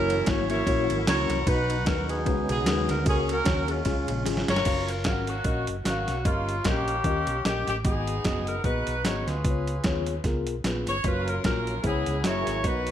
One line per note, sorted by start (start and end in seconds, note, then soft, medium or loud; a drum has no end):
0.00 0.21 F#1 loud
0.00 1.43 E3 medium
0.00 1.44 F#3 medium
0.00 0.17 A#3 medium
0.00 1.44 A#3 medium
0.00 0.17 C#4 medium
0.00 0.64 C#4 medium
0.00 1.44 C#4 medium
0.00 0.17 E4 medium
0.00 0.50 E4 medium
0.00 0.17 F#4 medium
0.00 1.46 F#4 medium
0.00 0.25 A#4 loud
0.00 0.17 C#5 loud
0.10 ride medium
0.26 0.61 G#1 medium
0.26 0.43 A#3 medium
0.26 0.43 C#4 medium
0.26 0.43 E4 medium
0.26 0.43 F#4 medium
0.26 0.43 C#5 medium
0.26 0.49 C#5 loud
0.26 kick loud
0.26 snare loud
0.26 ride medium
0.50 0.62 A#3 medium
0.50 0.62 C#4 medium
0.50 0.62 E4 medium
0.50 1.07 E4 medium
0.50 0.62 F#4 medium
0.50 1.07 A#4 medium
0.50 1.03 C#5 loud
0.50 0.62 E5 medium
0.50 ride medium
0.67 0.86 A#1 medium
0.67 0.96 A#3 medium
0.67 0.96 C#4 medium
0.67 0.97 E4 medium
0.67 0.97 F#4 medium
0.67 0.97 C#5 medium
0.67 kick medium
0.67 ride medium
0.90 1.05 G#1 loud
0.90 ride medium
1.07 1.26 C#2 medium
1.07 1.36 A#3 medium
1.07 1.37 C#4 medium
1.07 1.37 E4 medium
1.07 1.45 E4 medium
1.07 1.37 F#4 medium
1.07 1.45 A#4 medium
1.07 1.37 C#5 medium
1.07 1.45 C#5 medium
1.07 snare loud
1.07 ride medium
1.29 1.44 C2 loud
1.29 snare soft
1.29 ride medium
1.46 1.87 B1 loud
1.46 2.05 B2 medium
1.46 2.24 F#3 medium
1.46 2.24 B3 medium
1.46 2.25 D#4 medium
1.46 1.76 D#4 loud
1.46 2.09 D#4 medium
1.46 1.77 F#4 medium
1.46 2.23 F#4 medium
1.46 1.87 B4 medium
1.46 1.77 B4 loud
1.46 kick loud
1.46 ride medium
1.70 ride medium
1.86 2.26 D#2 medium
1.86 2.02 D#4 medium
1.86 2.02 F#4 medium
1.86 2.08 A#4 medium
1.86 2.03 B4 medium
1.86 kick loud
1.86 snare loud
1.86 ride medium
2.09 2.49 B3 medium
2.09 2.21 D#4 medium
2.09 2.49 D#4 medium
2.09 2.21 F#4 medium
2.09 2.47 G#4 medium
2.09 2.22 B4 medium
2.09 ride medium
2.25 2.46 C#2 loud
2.25 2.84 C#3 medium
2.25 3.05 D#3 medium
2.25 2.55 G#3 medium
2.25 3.05 G#3 medium
2.25 3.05 B3 medium
2.25 2.55 C#4 medium
2.25 3.05 C#4 medium
2.25 2.56 D#4 medium
2.25 2.32 F4 medium
2.25 2.56 F#4 medium
2.25 2.56 B4 medium
2.25 kick medium
2.25 ride medium
2.31 3.05 F#4 medium
2.49 2.67 B1 loud
2.49 3.03 B3 medium
2.49 3.03 D#4 medium
2.49 2.87 G#4 medium
2.49 ride medium
2.66 2.86 D#2 loud
2.66 2.96 G#3 medium
2.66 2.96 C#4 medium
2.66 2.96 D#4 medium
2.66 2.96 F#4 medium
2.66 2.72 A#4 medium
2.66 snare loud
2.66 ride medium
2.71 2.98 B4 medium
2.89 3.04 D2 medium
2.89 3.07 A#4 medium
2.89 snare soft
2.89 ride medium
3.04 3.40 C#2 loud
3.04 3.64 C#3 medium
3.04 3.84 A#3 medium
3.04 3.35 C#4 medium
3.04 3.83 C#4 medium
3.04 3.35 F#4 medium
3.04 3.84 F#4 medium
3.04 3.11 A4 medium
3.04 kick loud
3.04 ride medium
3.09 3.30 C#4 medium
3.09 3.29 G#4 medium
3.09 3.38 A#4 loud
3.29 3.70 C#4 medium
3.29 3.83 F#4 medium
3.29 3.70 A#4 medium
3.29 ride medium
3.45 3.80 D#2 loud
3.45 3.61 C#4 medium
3.45 3.61 F#4 medium
3.45 3.62 C#5 medium
3.45 kick loud
3.45 snare loud
3.45 ride medium
3.68 4.45 G#3 medium
3.68 3.80 C#4 medium
3.68 4.46 C#4 medium
3.68 4.27 F4 medium
3.68 3.80 F#4 medium
3.68 3.81 G#4 medium
3.68 ride soft
3.84 4.05 C#2 loud
3.84 4.44 C#3 medium
3.84 4.63 G#3 medium
3.84 4.63 C#4 medium
3.84 4.15 C#4 medium
3.84 4.64 F4 medium
3.84 4.15 F4 medium
3.84 4.16 G#4 medium
3.84 kick medium
3.84 snare soft
3.84 ride medium
4.08 4.24 A#1 loud
4.08 ride medium
4.25 4.45 G#1 medium
4.25 4.55 C#4 medium
4.25 4.55 F4 medium
4.25 4.55 G#4 medium
4.25 snare medium
4.25 ride medium
4.37 snare medium
4.48 4.63 G1 loud
4.48 5.24 F4 medium
4.48 4.88 A#4 medium
4.48 4.86 C#5 loud
4.48 snare medium
4.48 ride medium
4.56 snare medium
4.65 5.06 F#1 loud
4.65 4.95 C#4 medium
4.65 4.95 F#4 medium
4.65 4.95 A#4 medium
4.65 4.95 F5 medium
4.65 kick loud
4.65 closed hi-hat medium
4.65 crash medium
4.88 5.06 A#4 medium
4.88 closed hi-hat medium
5.04 5.39 G#1 medium
5.04 5.35 C#4 medium
5.04 5.35 F#4 medium
5.04 5.35 A#4 medium
5.04 5.27 A#4 medium
5.04 5.11 F5 medium
5.04 kick loud
5.04 snare loud
5.04 closed hi-hat medium
5.11 5.38 F#5 medium
5.27 5.69 A#3 medium
5.27 5.69 C#4 medium
5.27 5.69 F#4 medium
5.27 closed hi-hat medium
5.44 5.64 A#1 loud
5.44 5.75 C#4 medium
5.44 5.75 F#4 medium
5.44 5.75 A#4 medium
5.44 5.75 D#5 medium
5.44 kick medium
5.44 closed hi-hat medium
5.67 5.83 F#1 medium
5.67 closed hi-hat medium
5.84 6.04 G#1 medium
5.84 6.23 A#3 medium
5.84 6.14 C#4 medium
5.84 6.22 C#4 medium
5.84 6.15 F#4 medium
5.84 6.23 F#4 medium
5.84 6.15 A#4 medium
5.84 5.91 D#5 medium
5.84 snare medium
5.84 closed hi-hat loud
5.90 6.17 F5 medium
6.07 6.27 B1 medium
6.07 snare soft
6.07 closed hi-hat medium
6.24 6.59 G1 loud
6.24 6.84 G2 medium
6.24 6.64 A#3 medium
6.24 6.64 C#4 medium
6.24 6.55 C#4 medium
6.24 6.65 F4 medium
6.24 6.55 G4 medium
6.24 6.55 A#4 medium
6.24 6.55 D#5 medium
6.24 kick loud
6.24 closed hi-hat medium
6.49 closed hi-hat medium
6.64 6.99 A#1 loud
6.64 7.41 A#3 medium
6.64 6.94 C#4 medium
6.64 7.41 C#4 medium
6.64 6.94 G4 medium
6.64 7.45 G4 medium
6.64 6.95 A#4 medium
6.64 6.95 D#5 medium
6.64 kick loud
6.64 snare loud
6.64 closed hi-hat medium
6.88 closed hi-hat medium
7.04 7.24 D#2 medium
7.04 7.35 C#4 medium
7.04 7.11 F4 medium
7.04 7.35 A#4 medium
7.04 7.35 D#5 medium
7.04 kick medium
7.04 closed hi-hat medium
7.10 7.37 G4 medium
7.27 7.42 B1 loud
7.27 closed hi-hat medium
7.45 7.64 A#1 medium
7.45 7.74 C#4 medium
7.45 7.74 G4 medium
7.45 7.66 G4 medium
7.45 7.75 A#4 medium
7.45 7.75 D#5 medium
7.45 snare medium
7.45 closed hi-hat medium
7.67 7.82 A1 medium
7.67 7.76 G4 medium
7.67 snare soft
7.67 closed hi-hat medium
7.85 8.19 G#1 loud
7.85 8.44 G#2 medium
7.85 8.61 B3 medium
7.85 8.14 B3 medium
7.85 8.60 D#4 medium
7.85 8.15 F#4 medium
7.85 8.44 G#4 medium
7.85 8.15 G#4 medium
7.85 8.15 D#5 medium
7.85 kick loud
7.85 closed hi-hat medium
8.07 closed hi-hat medium
8.24 8.59 F#1 medium
8.24 8.54 B3 medium
8.24 8.54 F#4 medium
8.24 8.55 G#4 medium
8.24 8.55 D#5 medium
8.24 kick loud
8.24 snare loud
8.24 closed hi-hat medium
8.47 8.65 A#4 medium
8.47 closed hi-hat medium
8.64 8.83 A#1 medium
8.64 8.94 B3 medium
8.64 9.40 D#4 medium
8.64 9.40 F#4 medium
8.64 8.94 F#4 medium
8.64 8.95 G#4 medium
8.64 9.05 B4 medium
8.64 8.95 D#5 medium
8.64 kick medium
8.64 closed hi-hat medium
8.87 9.02 B1 loud
8.87 closed hi-hat medium
9.05 9.24 G#1 medium
9.05 9.34 B3 medium
9.05 9.34 F#4 medium
9.05 9.35 G#4 medium
9.05 9.27 C#5 medium
9.05 9.35 D#5 medium
9.05 snare loud
9.05 closed hi-hat loud
9.27 9.42 D2 medium
9.27 10.03 F4 medium
9.27 10.03 G#4 medium
9.27 10.07 B4 medium
9.27 snare soft
9.27 closed hi-hat medium
9.44 9.78 C#2 loud
9.44 10.03 C#3 medium
9.44 9.74 B3 medium
9.44 9.74 F4 medium
9.44 9.75 G#4 medium
9.44 9.51 B4 medium
9.44 kick loud
9.44 closed hi-hat medium
9.50 9.77 C#5 medium
9.68 closed hi-hat medium
9.84 10.19 D#2 medium
9.84 10.14 B3 medium
9.84 10.14 F4 medium
9.84 10.15 G#4 medium
9.84 10.15 C#5 loud
9.84 kick loud
9.84 snare loud
9.84 closed hi-hat medium
10.06 closed hi-hat medium
10.24 10.47 C#2 medium
10.24 10.54 B3 medium
10.24 10.54 F4 medium
10.24 10.55 G#4 medium
10.24 10.55 A#4 medium
10.24 kick medium
10.24 snare soft
10.24 closed hi-hat medium
10.47 10.62 B1 loud
10.47 closed hi-hat medium
10.64 10.83 A#1 medium
10.64 10.94 B3 medium
10.64 10.94 F4 medium
10.64 10.94 G#4 medium
10.64 10.95 B4 medium
10.64 snare medium
10.64 closed hi-hat medium
10.87 11.02 G1 medium
10.87 11.04 C#5 medium
10.87 snare soft
10.87 closed hi-hat medium
11.03 11.38 F#1 loud
11.03 11.82 F#3 medium
11.03 11.34 A#3 medium
11.03 11.81 C#4 medium
11.03 11.82 F4 medium
11.03 11.34 F4 medium
11.03 11.44 F4 medium
11.03 11.34 F#4 medium
11.03 11.82 A#4 medium
11.03 11.28 B4 medium
11.03 11.34 C#5 medium
11.03 kick loud
11.03 closed hi-hat medium
11.28 11.44 A#4 medium
11.28 closed hi-hat medium
11.44 11.78 A#1 medium
11.44 11.73 A#3 medium
11.44 11.82 C#4 medium
11.44 11.74 F4 medium
11.44 11.82 F4 medium
11.44 11.74 F#4 medium
11.44 11.82 A#4 medium
11.44 11.74 A#4 medium
11.44 kick loud
11.44 snare loud
11.44 closed hi-hat medium
11.67 closed hi-hat medium
11.82 12.03 C#2 medium
11.82 12.21 C#3 medium
11.82 12.23 G#3 medium
11.82 12.13 B3 medium
11.82 12.22 B3 medium
11.82 12.23 C#4 medium
11.82 12.23 E4 medium
11.82 12.13 E4 medium
11.82 12.22 E4 medium
11.82 12.13 G#4 medium
11.82 12.23 B4 medium
11.82 11.90 C5 medium
11.82 kick medium
11.82 closed hi-hat medium
11.87 12.25 G#4 medium
11.87 12.16 C#5 medium
12.06 12.22 C#2 loud
12.06 closed hi-hat medium
12.23 12.62 F#3 medium
12.23 12.64 A#3 medium
12.23 12.53 A#3 medium
12.23 12.64 E4 medium
12.23 12.62 E4 medium
12.23 12.29 F#4 medium
12.23 12.54 F#4 medium
12.23 12.54 G#4 medium
12.23 12.62 A#4 medium
12.23 12.65 C#5 medium
12.23 12.30 D#5 medium
12.23 snare loud
12.23 closed hi-hat loud
12.28 12.66 G#4 medium
12.28 12.56 E5 medium
12.46 12.62 G#1 medium
12.46 snare soft
12.46 closed hi-hat medium
12.63 12.91 B1 loud
12.63 12.91 B2 medium
12.63 12.91 F#3 medium
12.63 12.91 B3 medium
12.63 12.91 D#4 soft
12.63 12.91 D#4 medium
12.63 12.91 F#4 medium
12.63 12.91 A#4 medium
12.63 12.91 D#5 medium
12.63 kick medium
12.63 closed hi-hat medium
12.67 12.91 B4 medium
12.87 closed hi-hat medium